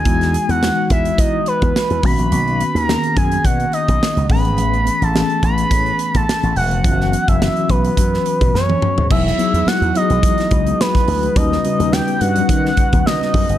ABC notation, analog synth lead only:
X:1
M:4/4
L:1/16
Q:"Swing 16ths" 1/4=106
K:Elyd
V:1 name="Analog synth lead"
g3 f3 e2 d2 B4 b2- | b3 a3 g2 f2 d4 b2- | b3 =a3 b4- b a3 f2- | f3 e3 B6 c4 |
e4 f2 d6 B4 | d4 =g2 f6 d4 |]